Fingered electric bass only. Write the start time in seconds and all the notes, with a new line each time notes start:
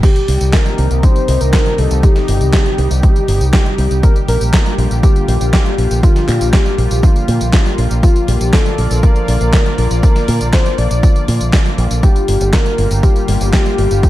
0.28 C2
0.41 C2
0.79 C2
0.91 C2
1.28 C2
1.41 C2
1.78 C2
1.91 C2
2.29 G1
2.41 C2
2.78 C2
2.91 C2
3.28 G1
3.41 C2
3.78 C2
3.91 C2
4.28 A#1
4.41 A#1
4.78 A#1
4.91 A#1
5.28 A#1
5.41 A#1
5.78 A#1
5.91 A#1
6.28 A#2
6.41 A#1
6.78 A#1
6.91 A#1
7.28 A#2
7.41 A#1
7.78 A#1
7.91 A#1
8.28 A#1
8.41 A#1
8.78 A#1
8.91 A#1
9.28 A#1
9.41 A#1
9.78 A#1
9.91 A#1
10.28 A#2
10.41 A#1
10.78 A#1
10.91 A#1
11.28 A#2
11.41 A#1
11.78 A#1
11.91 A#1
12.28 G1
12.41 G1
12.78 G1
12.91 G1
13.28 G1
13.41 G1
13.78 G1
13.91 G1